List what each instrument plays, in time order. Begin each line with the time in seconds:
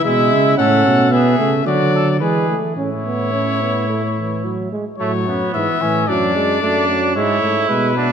0.04 tuba B2, trombone G#3, trumpet E4 E5
0.32 tuba C#3
0.58 tuba A2, trombone C#4, trumpet A4 F#5
0.86 tuba B2
1.11 trombone B3, trumpet G#4 E5
1.39 tuba C#3, trombone A3
1.66 tuba D3, trombone F#3, trumpet F#4 D5
1.95 trumpet A4
2.21 tuba E3, trombone G#3, trumpet G#4 B4
2.49 trombone A3
2.76 tuba A2, trombone C#4, trumpet E4 C#5
3.06 trombone B3
3.33 trombone C#4
3.62 trombone B3
3.90 trombone A3
4.17 trombone E3
4.45 trombone F#3
4.72 trombone G#3
4.98 tuba A2, trombone F#3, trumpet A3 C#5
5.26 tuba F#2, trumpet B3
5.54 tuba G#2, trombone E3, trumpet E5
5.81 tuba A2, trombone E3, trumpet C#4
6.08 tuba F#2, trombone F#3, trumpet D4 D5
6.36 trombone G#3
6.62 tuba F#2, trombone A3, trumpet D4
6.89 trombone F#3
7.16 tuba G#2, trombone G#3, trumpet E4 C#5
7.43 tuba G#2, trombone A3
7.69 tuba B2, trombone G#3, trumpet B4
7.96 trombone B3, trumpet D4